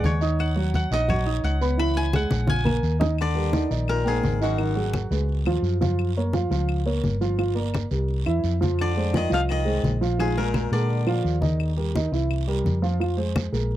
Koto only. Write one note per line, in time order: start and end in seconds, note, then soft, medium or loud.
0.00 0.78 B4 medium
0.00 0.11 D5 medium
0.00 0.40 F#5 medium
0.05 1.09 C#5 medium
0.40 0.75 F#5 medium
0.75 1.44 F#5 medium
0.93 2.48 D#5 loud
1.10 2.75 C#5 medium
1.44 2.15 F#5 medium
1.79 2.97 B5 loud
1.97 2.49 G#5 loud
2.16 3.55 F#5 medium
2.50 3.80 G#5 loud
3.22 4.82 D5 loud
3.89 5.73 A#4 medium
4.08 6.05 G#4 medium
4.43 6.55 F#4 medium
8.81 9.23 D5 loud
9.17 9.51 D#5 medium
9.34 9.40 F5 loud
9.51 10.79 D#5 medium
10.20 12.17 G#4 medium
10.38 12.22 A#4 medium
10.73 12.33 D5 medium